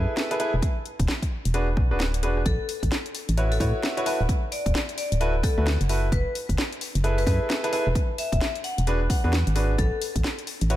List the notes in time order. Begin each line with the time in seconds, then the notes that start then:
Already playing: E4 G#4 A4 B4
0.17 snare
0.31 E4 G#4 A4 B4, cross-stick, closed hi-hat
0.40 E4 G#4 A4 B4, closed hi-hat
0.54 E1
0.62 kick, closed hi-hat
0.86 closed hi-hat
0.99 E1, kick, cross-stick, closed hi-hat
1.08 snare
1.22 kick, closed hi-hat
1.45 E1, closed hi-hat
1.54 D4 F#4 G#4 B4, closed hi-hat
1.77 B1, kick, cross-stick
1.91 D1 D4 F#4 G#4 B4
2.00 snare
2.14 closed hi-hat
2.23 E1 D4 F#4 G#4 B4, closed hi-hat
2.37 cross-stick
2.46 A1 A4, kick, closed hi-hat
2.69 open hi-hat
2.83 A1, kick, cross-stick, closed hi-hat
2.92 snare
3.06 closed hi-hat
3.15 open hi-hat
3.29 A1, closed hi-hat
3.37 E4 F#4 B4 C#5, closed hi-hat
3.52 A4, open hi-hat
3.60 A2 E4 F#4 B4 C#5, kick, cross-stick, open hi-hat
3.83 snare
3.97 E4 F#4 B4 C#5, cross-stick, closed hi-hat
4.06 E4 F#4 A4 B4, open hi-hat
4.20 D1
4.29 kick, closed hi-hat
4.52 D5, open hi-hat
4.66 D1, kick, closed hi-hat
4.75 snare
4.89 closed hi-hat
4.98 D5, open hi-hat
5.12 D1, closed hi-hat
5.20 E4 F#4 A4 B4, closed hi-hat
5.43 A4, kick, cross-stick, open hi-hat
5.58 D2 E4 F#4 A4 B4
5.67 snare
5.81 F#1, closed hi-hat
5.89 E4 F#4 A4 B4, open hi-hat
6.12 F#1 B4, kick, closed hi-hat
6.35 open hi-hat
6.49 F#1, kick, cross-stick, closed hi-hat
6.58 snare
6.73 closed hi-hat
6.81 open hi-hat
6.95 F#1, closed hi-hat
7.04 E4 G#4 A4 B4, closed hi-hat
7.18 B4, open hi-hat
7.27 F#2 E4 G#4 A4 B4, kick, cross-stick, open hi-hat
7.50 snare
7.64 E4 G#4 A4 B4, cross-stick, closed hi-hat
7.73 E4 G#4 A4 B4, open hi-hat
7.87 E1
7.95 kick, closed hi-hat
8.18 E5, open hi-hat
8.32 E1, kick, cross-stick, closed hi-hat
8.41 snare
8.55 closed hi-hat
8.64 F#5, open hi-hat
8.78 E1, closed hi-hat
8.87 D4 F#4 G#4 B4, closed hi-hat
9.10 F#5, kick, cross-stick, open hi-hat
9.24 E2 D4 F#4 G#4 B4
9.33 snare
9.47 G#1, closed hi-hat
9.55 D4 F#4 G#4 B4, open hi-hat
9.78 A1 A4, kick, closed hi-hat
10.02 open hi-hat
10.16 A1, kick, cross-stick, closed hi-hat
10.24 snare
10.39 closed hi-hat
10.47 open hi-hat
10.61 A1, closed hi-hat
10.70 E4 F#4 B4 C#5, closed hi-hat